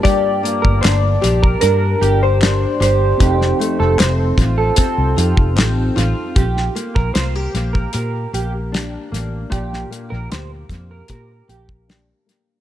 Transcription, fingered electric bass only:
X:1
M:4/4
L:1/16
Q:1/4=76
K:Bb
V:1 name="Fingered electric bass" clef=bass
G,,,2 z G,,, G,,,2 B,,,2 G,,2 G,,,4 G,,,2 | F,,,2 z F,,, F,,,2 A,,,2 z C,, F,, F,,, A,,,2 A,,, z | B,,,2 z B,,, C,,2 B,,,2 B,,2 B,,,4 A,,,2 | B,,,2 z B,,, D,,2 F,,2 B,,2 B,,,4 z2 |]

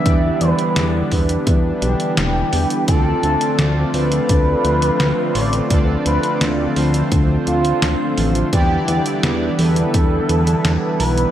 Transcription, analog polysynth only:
X:1
M:4/4
L:1/8
Q:1/4=85
K:Ephr
V:1 name="Analog polysynth"
[E,B,DEGd]3 [E,B,DEGB]4- [E,B,DEGB] | [D,CDFAd]3 [D,CDFAd]4- [D,CDFAd] | [D,CDFAd]3 [D,CDFAc]4- [D,CDFAc] | [E,B,DEGd]3 [E,B,DEGB]4- [E,B,DEGB] |]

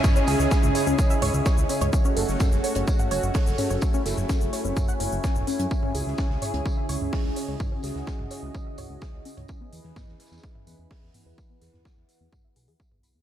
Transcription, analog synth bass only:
X:1
M:4/4
L:1/16
Q:1/4=127
K:C#m
V:1 name="Analog synth bass" clef=bass
z2 C,, C,, z C,, z C,, z2 C,, C,, z C,, z C,, | z2 F,,, F,,, z F,,, z F,,, z2 F,,, F,,, z F,,, z F,,, | z2 F,,, F,,, z F,,, z F,,, z2 F,,, F,,, z E,,, z F,, | z2 C,, C,, z C,, z C,, z2 C,, C,, z C,, z C,, |
z2 C,, C,, z C,, z C,, z2 C,, C,, z C,, z C,, | z2 E,, E,, z E,, z E,, z2 E,, E,, z E,, z E,, | z2 E,, E,, z E,, z E,, z2 B,,, E,, z B,,,2 E,, |]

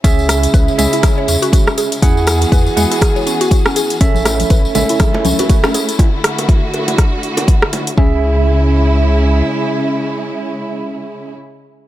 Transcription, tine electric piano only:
X:1
M:4/4
L:1/8
Q:"Swing 16ths" 1/4=121
K:C#phr
V:1 name="Tine electric piano"
[CGe]3 [CGe]4- [CGe] | [EGf]3 [EGf]4- [EGf] | [CAe]3 [CAe]4- [CAe] | z8 |
[CGe]8- | [CGe]8 |]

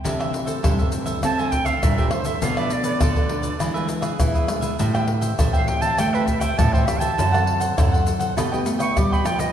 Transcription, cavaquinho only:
X:1
M:4/4
L:1/16
Q:1/4=101
K:C
V:1 name="Cavaquinho"
[EAce] [Ace] z [Ace] [EAce] [Ace]2 [Ace] [EAce] [Ace] z [Ace]2 [Ace]2 [Ace] | [FABd] [ABd] z [ABd] [FABd] [ABd]2 [ABd] [D^GBe] [GBe] z [GBe]2 [GBe]2 [GBe] | [Aceg] [ceg] z [ceg] [Aceg] [ceg]2 [ceg] [Aceg] [ceg] z [ceg]2 [ceg]2 [ceg] | [EAc^f] [Acf] z [Acf] [EAcf] [Acf]2 [Acf] [AB^dg] [Bdg] z [Bdg]2 [Bdg]2 [Bdg] |]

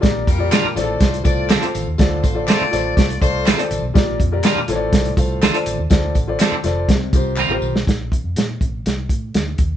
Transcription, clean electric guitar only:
X:1
M:4/4
L:1/16
Q:1/4=122
K:F
V:1 name="Clean electric guitar"
z4 [G,DFB] z6 z [F,CDA] z3 | z4 [A,CFA] z6 z [A,CFA] z3 | z4 [G,DFB] z6 z [A,DFA] z3 | z4 [F,CDA] z6 z [G,CFB] z3 |
z16 |]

